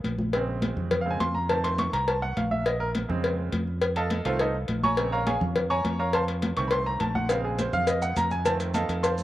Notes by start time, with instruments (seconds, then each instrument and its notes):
0.04 fingered electric bass A#1, cowbell, high conga
0.18 high conga
0.33 upright piano C#3 G#3 C4, cowbell
0.48 high conga
0.62 cowbell, high conga
0.76 fingered electric bass F2, high conga, low conga
0.91 cowbell, high conga, low conga
1.01 upright piano F5
1.06 upright piano C#3 G#3 C4, high conga
1.11 upright piano G#5
1.20 fingered electric bass F2, upright piano C6, cowbell, high conga
1.35 upright piano A#5, high conga
1.49 upright piano D#3 A3 C4 A5, cowbell, high conga
1.64 upright piano C6, cowbell, high conga
1.78 upright piano C#6, cowbell, high conga
1.93 fingered electric bass C2, upright piano A#5, cowbell, high conga
2.08 upright piano A5, cowbell, high conga
2.22 upright piano F#5, high conga
2.37 fingered electric bass A#1, upright piano F5, cowbell, high conga
2.51 upright piano E5, high conga
2.66 upright piano D#5, cowbell
2.80 upright piano A#4, high conga
2.95 cowbell, high conga
3.09 fingered electric bass F2, upright piano C#3 G#3 C4, high conga, low conga
3.24 cowbell, high conga
3.38 high conga
3.52 fingered electric bass F2, cowbell, high conga
3.67 high conga
3.82 cowbell, high conga
3.96 upright piano A4 D#5 F5 A5, cowbell, high conga
4.10 cowbell, high conga
4.25 fingered electric bass C2, upright piano D#3 A3 C4 F4 A4 C5 F5, cowbell, high conga
4.39 upright piano D#4 A4 C5 D#5, cowbell, high conga
4.55 high conga
4.68 fingered electric bass A#1, cowbell, high conga
4.83 upright piano C#5 G#5 A#5 C#6, high conga
4.97 upright piano C#3 G#3 C4, cowbell
5.12 upright piano A#4 C#5 F5 A#5, high conga
5.27 upright piano G#4 C#5 F5 G#5, cowbell, high conga
5.41 fingered electric bass F2, high conga, low conga
5.56 cowbell, high conga, low conga
5.70 upright piano C#5 G#5 A#5 C#6, high conga
5.85 fingered electric bass F2, cowbell, high conga
5.99 upright piano A#4 C#5 F5 A#5, high conga
6.13 upright piano C5 F5 A5 C6, cowbell, high conga
6.28 cowbell, high conga
6.42 cowbell, high conga
6.57 fingered electric bass C2, upright piano D#3 A3 C4 C#6, cowbell
6.68 upright piano B5, cowbell
6.72 upright piano C6, high conga
6.86 upright piano A#5, high conga
7.00 fingered electric bass A#1, upright piano A5, cowbell, high conga
7.15 upright piano F#5, high conga
7.29 upright piano C#3 G#3 C4 F5, cowbell, maracas
7.44 upright piano G#4, high conga
7.59 upright piano C5, cowbell, high conga, maracas
7.73 fingered electric bass F2, upright piano F5, high conga, low conga, maracas
7.87 upright piano D#5, cowbell, high conga, maracas
8.02 upright piano F#5, high conga, maracas
8.16 fingered electric bass F2, upright piano A#5, cowbell, high conga, maracas
8.31 upright piano G#5, high conga, maracas
8.45 upright piano D#3 A3 C4 A5, cowbell, high conga, maracas
8.60 cowbell, high conga, maracas
8.74 upright piano A4 D#5 F5 A5, cowbell, high conga, maracas
8.89 fingered electric bass F2, cowbell, high conga, maracas
9.03 upright piano C5 F5 A5 C6, cowbell, high conga, maracas
9.17 high conga, maracas